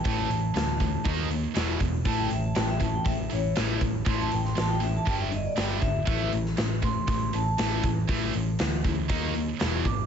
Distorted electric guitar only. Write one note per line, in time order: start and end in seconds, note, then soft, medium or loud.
0.04 0.28 A2 medium
0.04 0.28 E3 loud
0.04 0.29 A3 loud
0.29 0.52 A2 medium
0.29 0.53 E3 medium
0.54 0.77 A2 medium
0.54 0.77 E3 medium
0.80 1.03 A2 medium
0.80 1.03 E3 medium
1.04 1.28 D#3 medium
1.04 1.29 A#3 medium
1.04 1.29 D#4 loud
1.30 1.53 D#3 medium
1.30 1.53 A#3 medium
1.54 1.78 E2 loud
1.54 1.79 B2 loud
1.54 1.79 E3 loud
1.81 2.03 E2 medium
1.81 2.03 B2 medium
2.05 2.29 A2 medium
2.05 2.29 E3 medium
2.05 2.29 A3 loud
2.30 2.53 A2 medium
2.30 2.53 E3 medium
2.55 2.78 A2 medium
2.55 2.78 E3 medium
2.80 3.03 A2 medium
2.80 3.03 E3 medium
3.05 3.28 A2 medium
3.05 3.28 E3 medium
3.30 3.53 A2 medium
3.30 3.53 E3 medium
3.56 3.79 A2 loud
3.56 3.79 E3 medium
3.56 3.80 A3 loud
3.80 4.03 A2 medium
3.80 4.04 E3 medium
4.05 4.29 A2 medium
4.05 4.30 E3 loud
4.05 4.30 A3 loud
4.31 4.54 A2 medium
4.31 4.54 E3 medium
4.55 4.79 A2 medium
4.55 4.79 E3 medium
4.80 5.04 A2 medium
4.80 5.04 E3 medium
5.05 5.30 G2 medium
5.05 5.30 D3 loud
5.05 5.30 G3 loud
5.31 5.54 G2 medium
5.31 5.55 D3 medium
5.56 5.80 G2 loud
5.56 5.81 D3 loud
5.56 5.81 G3 medium
5.81 6.04 G2 medium
5.81 6.05 D3 medium
6.05 6.30 A2 medium
6.05 6.31 E3 medium
6.05 6.31 A3 loud
6.32 6.55 A2 medium
6.32 6.55 E3 medium
6.57 6.80 A2 medium
6.57 6.80 E3 medium
6.82 7.05 A2 medium
6.82 7.05 E3 medium
7.07 7.31 A2 medium
7.07 7.31 E3 medium
7.33 7.56 A2 medium
7.33 7.56 E3 medium
7.58 7.82 A2 medium
7.58 7.83 E3 loud
7.58 7.83 A3 loud
7.84 8.06 A2 medium
7.84 8.07 E3 medium
8.08 8.32 A2 medium
8.08 8.32 E3 loud
8.08 8.33 A3 loud
8.34 8.57 A2 medium
8.34 8.57 E3 medium
8.59 8.82 A2 medium
8.59 8.82 E3 medium
8.84 9.07 A2 medium
8.84 9.07 E3 medium
9.08 9.33 D#3 medium
9.08 9.33 A#3 medium
9.08 9.33 D#4 loud
9.34 9.57 D#3 medium
9.34 9.58 A#3 medium
9.59 9.84 E2 loud
9.59 9.84 B2 loud
9.59 9.84 E3 loud
9.86 10.06 E2 medium
9.86 10.06 B2 medium